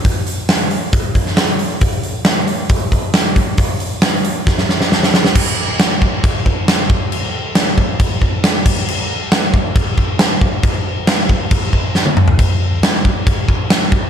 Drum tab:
CC |----------------|----------------|----------------|x---x---x---x---|
HH |o-o-o-o-o-o-o-o-|o-o-o-o-o-o-o-o-|o-o-o-o---------|----------------|
SD |----o------oo---|----o-------o---|----o---oooooooo|----o-------o---|
T1 |----------------|----------------|----------------|----------------|
T2 |----------------|----------------|----------------|----------------|
FT |----------------|----------------|----------------|----------------|
BD |o-------o-o-----|o-------o-o---o-|o-------o-------|o-----o-o-o---o-|

CC |x---x---x---x-x-|x---x---x---x---|x---x---x-------|x---x---x---x---|
HH |----------------|----------------|----------------|----------------|
SD |----o-------o---|----o-------o---|----o-------o---|----o-------o---|
T1 |----------------|----------------|-------------o--|----------------|
T2 |----------------|----------------|--------------o-|----------------|
FT |----------------|----------------|---------------o|----------------|
BD |------o-o-o---o-|------o-o-o---o-|o-----o-o-o-----|o-----o-o-o---o-|